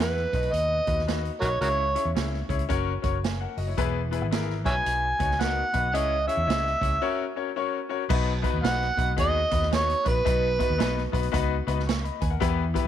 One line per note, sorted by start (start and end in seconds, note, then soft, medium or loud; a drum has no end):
0.00 0.25 E2 medium
0.00 0.30 E3 medium
0.00 0.20 E4 medium
0.00 0.20 G#4 medium
0.00 0.21 B4 medium
0.00 0.54 B4 medium
0.00 0.21 F#5 medium
0.00 snare loud
0.00 closed hi-hat medium
0.17 snare soft
0.33 0.49 B1 medium
0.33 1.04 B2 medium
0.33 0.74 D#4 medium
0.33 0.74 F#4 medium
0.33 0.75 B4 medium
0.33 0.75 D#5 medium
0.33 kick medium
0.33 closed hi-hat medium
0.43 closed hi-hat medium
0.53 0.79 D#2 medium
0.53 1.07 D#5 loud
0.53 closed hi-hat medium
0.87 1.29 D#2 medium
0.87 1.00 D#4 medium
0.87 1.00 F#4 medium
0.87 1.00 B4 medium
0.87 1.00 D#5 medium
0.87 kick medium
0.87 closed hi-hat medium
0.99 snare soft
1.07 1.28 D#4 medium
1.07 1.29 F#4 medium
1.07 1.29 B4 medium
1.07 1.29 D#5 medium
1.07 snare loud
1.07 closed hi-hat medium
1.25 closed hi-hat soft
1.41 1.57 B1 medium
1.41 1.54 D#4 medium
1.41 1.48 F#4 medium
1.41 1.54 F#4 medium
1.41 1.49 A#4 medium
1.41 1.54 B4 medium
1.41 1.60 C#5 loud
1.41 1.55 D#5 medium
1.41 kick medium
1.41 closed hi-hat medium
1.61 1.95 C#2 loud
1.61 2.46 C#3 medium
1.61 1.83 C#4 medium
1.61 1.83 E4 medium
1.61 1.67 F#4 medium
1.61 1.83 G#4 medium
1.61 1.68 A#4 medium
1.61 2.12 C#5 loud
1.61 1.83 C#5 medium
1.61 closed hi-hat medium
1.95 2.08 C#4 medium
1.95 2.08 E4 medium
1.95 2.08 G#4 medium
1.95 2.08 C#5 medium
1.95 closed hi-hat medium
2.05 2.13 E2 medium
2.15 2.42 C#2 medium
2.15 2.36 C#4 medium
2.15 2.37 E4 medium
2.15 2.37 G#4 medium
2.15 2.37 C#5 medium
2.15 snare loud
2.15 closed hi-hat medium
2.33 snare soft
2.49 2.65 C#2 medium
2.49 2.62 C#4 medium
2.49 2.62 E4 medium
2.49 2.62 G#4 medium
2.49 2.63 C#5 medium
2.49 kick medium
2.49 closed hi-hat medium
2.59 closed hi-hat medium
2.69 2.96 F#1 medium
2.69 2.90 C#4 loud
2.69 2.91 F#4 loud
2.69 2.91 A#4 loud
2.69 2.91 C#5 loud
2.69 kick medium
2.69 closed hi-hat medium
3.02 3.45 F#1 medium
3.02 3.16 C#4 medium
3.02 3.16 F#4 medium
3.02 3.16 A#4 medium
3.02 3.16 C#5 medium
3.02 kick medium
3.02 closed hi-hat medium
3.24 3.40 G#5 medium
3.24 snare medium
3.24 closed hi-hat medium
3.41 3.57 A#4 medium
3.41 3.57 F#5 medium
3.57 3.73 F#1 medium
3.57 3.68 F#4 medium
3.57 3.67 D#5 medium
3.57 open hi-hat medium
3.67 3.76 E4 medium
3.67 3.93 C#5 medium
3.77 4.21 E1 loud
3.77 4.62 E3 medium
3.77 3.99 B3 loud
3.77 3.99 E4 medium
3.77 3.99 G#4 loud
3.77 3.99 B4 loud
3.77 kick loud
3.77 closed hi-hat medium
4.11 4.24 B3 medium
4.11 4.24 E4 medium
4.11 4.24 G#4 medium
4.11 4.25 B4 medium
4.11 closed hi-hat medium
4.21 4.66 G#1 medium
4.31 4.53 B3 medium
4.31 4.53 E4 medium
4.31 4.53 G#4 medium
4.31 4.53 A#4 loud
4.31 snare loud
4.31 closed hi-hat medium
4.50 snare soft
4.64 4.81 B1 medium
4.64 5.36 B2 medium
4.64 5.06 B3 medium
4.64 5.06 D#4 medium
4.64 5.06 F#4 medium
4.64 5.06 B4 medium
4.64 4.74 C#5 medium
4.64 4.74 E5 medium
4.64 5.42 G#5 loud
4.64 kick loud
4.64 closed hi-hat medium
4.86 5.12 B1 medium
4.86 closed hi-hat loud
5.19 5.61 C#2 medium
5.19 5.32 B3 medium
5.19 5.32 D#4 medium
5.19 5.32 F#4 medium
5.19 5.33 C#5 medium
5.19 kick medium
5.19 closed hi-hat medium
5.31 snare soft
5.39 5.61 B3 medium
5.39 5.61 D#4 medium
5.39 5.61 F#4 medium
5.39 5.61 A#4 medium
5.39 5.96 F#5 loud
5.39 snare medium
5.39 closed hi-hat medium
5.73 5.93 B1 medium
5.73 5.86 B3 medium
5.73 5.86 D#4 medium
5.73 5.86 F#4 medium
5.73 5.86 B4 medium
5.73 kick medium
5.73 closed hi-hat medium
5.93 6.27 C#2 loud
5.93 6.78 C#3 medium
5.93 6.15 C#4 medium
5.93 6.15 E4 medium
5.93 6.15 G#4 medium
5.93 6.15 C#5 loud
5.93 6.27 D#5 medium
5.93 closed hi-hat medium
6.27 6.40 C#4 medium
6.27 6.40 E4 medium
6.27 6.40 G#4 medium
6.27 6.41 C#5 medium
6.27 7.32 E5 medium
6.27 closed hi-hat medium
6.37 6.45 E2 medium
6.47 6.74 C#2 medium
6.47 6.68 C#4 medium
6.47 6.69 E4 medium
6.47 6.69 G#4 medium
6.47 6.69 D#5 medium
6.47 snare loud
6.47 closed hi-hat medium
6.67 snare soft
6.81 6.97 C#2 loud
6.81 6.94 C#4 medium
6.81 6.94 E4 medium
6.81 6.94 G#4 medium
6.81 6.94 C#5 medium
6.81 kick medium
6.81 closed hi-hat medium
7.02 7.23 C#4 loud
7.02 7.23 F#4 loud
7.02 7.23 A#4 loud
7.02 7.23 C#5 loud
7.36 7.49 C#4 medium
7.36 7.49 F#4 medium
7.36 7.49 A#4 medium
7.36 7.49 C#5 medium
7.56 7.77 C#4 medium
7.56 7.77 F#4 medium
7.56 7.77 A#4 medium
7.56 7.78 C#5 loud
7.89 8.02 C#4 medium
7.89 8.02 F#4 medium
7.89 8.03 A#4 medium
7.89 8.03 C#5 loud
8.09 8.44 B1 loud
8.09 8.94 B2 medium
8.09 8.30 B3 loud
8.09 8.31 D#4 loud
8.09 8.31 F#4 loud
8.09 8.31 B4 loud
8.09 kick loud
8.09 crash loud
8.42 8.56 B3 medium
8.42 8.56 D#4 medium
8.42 8.56 F#4 medium
8.42 8.56 B4 medium
8.42 kick medium
8.42 closed hi-hat medium
8.54 8.61 D#2 medium
8.63 8.89 B1 medium
8.63 8.84 B3 medium
8.63 8.84 D#4 medium
8.63 8.85 F#4 medium
8.63 8.85 B4 medium
8.63 9.14 F#5 loud
8.63 snare loud
8.63 closed hi-hat medium
8.82 snare soft
8.97 9.18 B1 medium
8.97 9.10 B3 medium
8.97 9.10 D#4 medium
8.97 9.10 F#4 medium
8.97 9.11 B4 medium
8.97 kick medium
8.97 closed hi-hat medium
9.17 9.44 D#2 medium
9.17 9.38 B3 medium
9.17 9.38 D#4 medium
9.17 9.38 F#4 medium
9.17 9.39 G#4 loud
9.17 9.69 D#5 loud
9.17 kick medium
9.17 closed hi-hat medium
9.51 9.93 D#2 medium
9.51 9.64 B3 medium
9.51 9.64 D#4 medium
9.51 9.64 F#4 medium
9.51 9.64 B4 medium
9.51 kick medium
9.51 closed hi-hat medium
9.62 snare soft
9.71 9.92 B3 medium
9.71 9.92 D#4 medium
9.71 9.93 F#4 medium
9.71 9.93 C#5 medium
9.71 10.09 C#5 medium
9.71 snare loud
9.71 closed hi-hat medium
9.89 closed hi-hat medium
10.04 10.21 A#1 medium
10.04 10.17 B3 medium
10.04 10.18 D#4 medium
10.04 10.18 F#4 medium
10.04 10.18 B4 medium
10.04 11.14 B4 medium
10.04 kick medium
10.04 closed hi-hat medium
10.25 10.59 B1 loud
10.25 11.09 B2 medium
10.25 10.46 B3 medium
10.25 10.46 D#4 medium
10.25 10.47 F#4 medium
10.25 10.47 B4 medium
10.25 kick loud
10.25 closed hi-hat medium
10.59 10.72 B3 medium
10.59 10.72 D#4 medium
10.59 10.72 F#4 medium
10.59 10.72 B4 medium
10.59 kick medium
10.59 closed hi-hat medium
10.70 10.78 D#2 medium
10.78 11.06 B1 loud
10.78 11.00 B3 medium
10.78 11.00 D#4 medium
10.78 11.00 F#4 medium
10.78 11.00 B4 loud
10.78 snare loud
10.78 closed hi-hat medium
10.98 snare soft
11.12 11.29 B1 medium
11.12 11.25 B3 medium
11.12 11.26 D#4 medium
11.12 11.26 F#4 medium
11.12 11.26 B4 medium
11.12 kick medium
11.12 closed hi-hat medium
11.23 closed hi-hat medium
11.32 11.60 C#2 medium
11.32 11.54 B3 loud
11.32 11.54 D#4 loud
11.32 11.54 F#4 medium
11.32 11.54 B4 loud
11.32 kick medium
11.32 closed hi-hat loud
11.67 12.09 C#2 medium
11.67 11.80 B3 medium
11.67 11.80 D#4 medium
11.67 11.80 F#4 medium
11.67 11.80 B4 medium
11.67 closed hi-hat medium
11.80 snare soft
11.87 12.03 C#6 medium
11.87 snare loud
11.87 closed hi-hat medium
12.04 12.21 D#5 medium
12.04 12.20 B5 medium
12.04 closed hi-hat medium
12.21 12.37 D#2 medium
12.21 12.31 B4 medium
12.21 12.31 G#5 medium
12.21 kick medium
12.21 closed hi-hat medium
12.30 12.57 A#4 medium
12.30 12.57 F#5 medium
12.40 12.75 E2 loud
12.40 12.88 E3 medium
12.40 12.62 B3 loud
12.40 12.62 E4 loud
12.40 12.62 G4 loud
12.40 12.62 B4 loud
12.40 kick loud
12.40 closed hi-hat loud
12.74 12.87 B3 medium
12.74 12.87 E4 medium
12.74 12.88 G4 medium
12.74 12.88 B4 loud
12.74 kick medium
12.74 closed hi-hat medium